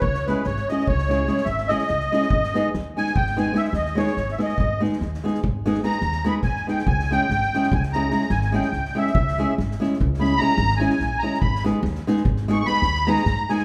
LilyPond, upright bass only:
\new Staff \with { instrumentName = "Upright bass" } { \clef bass \time 11/8 \tempo 4 = 145 cis,4 gis,,8 r8 cis,4. gis,,4 cis,8 r8 | gis,,4 dis,8 r8 gis,,4. dis,4 gis,,8 r8 | gis,,4 dis,8 r8 gis,,4. dis,4 gis,,8 r8 | cis,4 gis,,8 r8 cis,4. gis,,4 cis,8 r8 |
cis,4 gis,,8 r8 cis,4. gis,,4 ais,,8 r8 | gis,,4 dis,8 r8 gis,,4. dis,4 gis,8 r8 | }